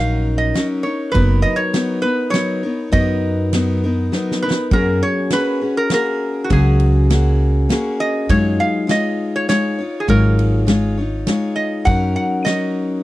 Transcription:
Already playing: A#1 F#3 C#4 D#4 A#4 F5
0.38 D#5
0.54 F#3 C#4 D#4 A#4, snare, ride
0.83 C#4 D#4 A#4 C#5
1.12 F#1 F#3 B3 B4, kick, ride
1.16 D#4 A#4
1.42 D#5
1.56 C#5
1.73 F#3 B3 D#4 A#4, snare, ride
2.02 B3 D#4 A#4 B4
2.30 F#3 B3 D#4 C#5, snare, ride
2.34 A#4
2.63 B3 D#4 A#4
2.92 F#2 F#3 B3 D#4 A#4 D#5, kick, ride
3.53 F#3 B3 D#4 A#4, snare, ride
3.84 B3 D#4 A#4
4.12 F#3 B3 D#4 A#4, snare
4.31 snare
4.42 B3 D#4 A#4 B4
4.50 snare
4.71 F#2 F#3 A#3 C#4 F#4 G#4 A#4, kick, ride
5.03 C#5
5.30 A#3 C#4 F#4 G#4 B4, snare, ride
5.61 C#4 F#4 G#4
5.77 A#4
5.90 A#3 C#4 F#4 G#4 A#4, snare, ride
6.44 F#4
6.50 C#2 F#3 A#3 C#4 F#4 G#4, kick, ride
6.80 ride
7.10 A#3 C#4 F#4 G#4, snare, ride
7.69 A#3 C#4 F#4 G#4, snare, ride
8.00 D#5
8.29 F#2 F#3 G#3 D#4 F4 C#5, kick, ride
8.60 F5
8.87 G#3 D#4 F4 C#5 D#5, snare, ride
9.36 C#5
9.48 G#3 D#4 F4 C#5, snare, ride
9.78 D#4 F4 C#5
10.00 G#4
10.08 G#1 F#3 G#3 D#4 F4 A#4 C#5, kick, ride
10.39 ride
10.67 G#3 D#4 F4 C#5, snare, ride
10.98 D#4 F4 C#5
11.27 G#3 D#4 F4 C#5, snare, ride
11.56 D#5
11.85 F#2 F#3 C#4 D#4 A#4 F#5, kick, ride
12.16 F#5
12.45 F#3 C#4 D#4 A#4 D#5, snare, ride

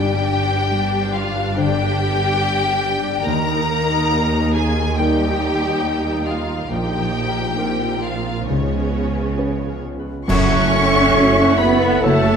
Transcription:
Already playing: G1 G2 G3 D4 G4 G5
0.15 G3
0.44 C5
0.71 G3
1.01 C5
1.14 F4 F5
1.29 D4
1.56 D3 D4 G4 C5 G5
2.14 C5
2.71 C5
2.99 D4
3.26 D#2 D#3 A#3 D#4 A#4 A#5
3.56 D#4
4.13 A#3 D#5
4.55 G#4 G#5
4.70 A#4
4.98 G3 D#4 G4 A#4 G5
5.28 D#4
5.56 G4
5.85 D#5
6.13 G4
6.26 F4 F5
6.42 A#4
6.70 A#1 A#2 F3 D#4 G4 G5
7.00 F3
7.29 A#4
7.57 A#1 A#2 C4 D#4 F4 A#4
7.89 A#4
8.03 F4 F5
8.19 D#4
8.48 C#2 C#3 F3 B3 C#4 C#5
8.80 C#4
9.10 F4
9.38 C#4 B4 C#5
9.69 F4
9.99 B4
10.27 F#1 F#2 C#4 E4 F#4 A4 C#5 E5 F#5 C#6, concert bass drum, crash
10.51 A4 E5 F#5
10.59 A3
10.73 F#4 C#5 F#5
10.88 C#5
10.94 A4 E5 F#5
11.16 F#1 A3 F#4 A4 C#5 F#5
11.39 A4 E5 F#5
11.46 C#5
11.58 B3 F#4 B4 C#5 F#5 B5
11.75 E4
11.81 A4 E5 F#5
12.02 F#1 C#3 A3 E4 F#4 A4 C#5 E5 F#5 A5
12.24 A4 E5 F#5

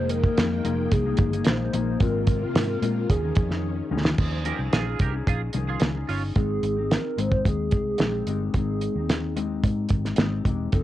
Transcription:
Already playing: F1 D#3 F3 G#3 A#3 D#4 G#4 C5 G5
0.09 A#4, closed hi-hat
0.23 A#3 D#4 G#4, kick
0.38 F2, snare, closed hi-hat
0.64 F1 F3 A#3 D#4 G#4, closed hi-hat
0.91 C2 G#4, kick, closed hi-hat
1.05 F3 A#3 D#4 G#4
1.17 G1, kick, closed hi-hat
1.32 A#3 D#4 G#4, closed hi-hat
1.45 A#1 C5, snare, closed hi-hat
1.73 A#1 F3 A#3 D#4 G#4, closed hi-hat
2.00 G#1 C3 G#3 A#3 C4 F4 A#4, kick, closed hi-hat
2.27 kick, closed hi-hat
2.42 C4 F4 A#4
2.55 G#2, snare, closed hi-hat
2.82 A#2 G#3 C4 F4 A#4, closed hi-hat
3.09 D#2 D#3 F3 C#4 D#4 G#4, kick, closed hi-hat
3.23 D#3 F3 C#4 D#4 G#4
3.35 F2, kick, closed hi-hat
3.50 C#4 D#4 G#4, snare
3.91 D2 D#3 F3 C#4 D#4 G#4
4.05 snare
4.18 D#2 F3 C#4 D#4 G#4, kick, crash
4.44 F3 C#4 D#4 G4 G#4 A#4, closed hi-hat
4.59 C2
4.73 A#1 F4 G#4, snare, closed hi-hat
4.85 C#4 D#4 G#4
4.99 C2 G4 A#4, kick, closed hi-hat
5.12 C#4 D#4 G#4
5.27 A#1 F4 G#4, kick, closed hi-hat
5.53 C2 D#3 F3 C#4 D#4 G#4, closed hi-hat
5.69 F4 G#4
5.80 C#2, snare, closed hi-hat
5.95 C#4 D#4 G#4
6.09 G1 C#4 F4, open hi-hat
6.35 G#1 G#3 C4 D#4 G#4, kick, closed hi-hat
6.63 G#1, closed hi-hat
6.77 C4 D#4 G4
6.91 A#4, snare, closed hi-hat
7.17 G#1 G#3 C4 D#4 C5, closed hi-hat
7.32 kick
7.45 D#2 G#4, kick, closed hi-hat
7.71 C2, kick, closed hi-hat
7.98 A#1 G#3 C4 D#4, snare, closed hi-hat
8.02 G4
8.27 G1 G#3 C4 D#4 G4, closed hi-hat
8.54 G#1 G#3 C4 D#4 G#4, kick, closed hi-hat
8.81 closed hi-hat
8.95 D#2 C4 D#4
9.09 snare, closed hi-hat
9.36 G#3 C4 D#4 G4, closed hi-hat
9.64 G#2, kick, closed hi-hat
9.89 G#1, kick, closed hi-hat
10.05 snare, closed hi-hat
10.16 G#1 G#3 C4 D#4, snare, closed hi-hat
10.21 G4
10.45 E1 G#3 C4 D#4 G4, kick, closed hi-hat
10.72 F1 F3 C4 D#4 A4, kick, closed hi-hat

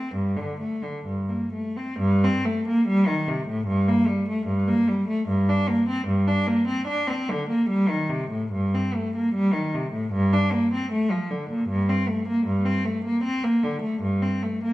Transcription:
Already playing: C4
0.15 G2
0.37 D3
0.60 A3
0.83 D3
1.06 G2
1.29 A#3
1.53 A3
1.77 C4
1.99 G2
2.24 C4
2.45 A3
2.68 A#3
2.88 G3
3.07 D#3
3.28 C3
3.48 A2
3.67 G2
3.88 A#3
4.08 G3
4.29 A3
4.47 G2
4.68 A#3
4.88 G3
5.08 A3
5.29 G2
5.49 D4
5.69 A#3
5.89 C4
6.08 G2
6.27 D4
6.47 A#3
6.68 C4
6.87 D4
7.08 C4
7.29 D3
7.49 A#3
7.69 G3
7.89 D#3
8.09 C3
8.31 A2
8.52 G2
8.74 C4
8.96 A3
9.16 A#3
9.34 G3
9.53 D#3
9.74 C3
9.93 A2
10.13 G2
10.33 D4
10.54 A#3
10.74 C4
10.92 A3
11.11 F3
11.31 D3
11.50 A#2
11.69 G2
11.89 C4
12.08 A3
12.28 A#3
12.46 G2
12.65 C4
12.85 A3
13.05 A#3
13.24 C4
13.44 A#3
13.64 D3
13.82 A3
14.02 G2
14.22 C4
14.43 A3
14.64 A#3

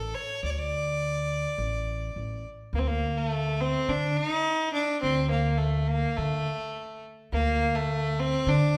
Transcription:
Already playing: A1 A4
0.15 C#5
0.43 D2 D5
0.50 C#5
0.59 D5
1.58 A1
2.16 A1
2.73 D2 A#3
2.79 C4
2.88 A#3
3.17 A3
3.61 C4
3.89 D3 D4
4.17 D4
4.29 D#4
4.73 D4
5.02 D2 C4
5.30 A#3
5.58 A3
5.88 A#3
6.17 D3 A3
7.32 D2 A#3
7.75 A3
8.20 C4
8.47 D3 D4

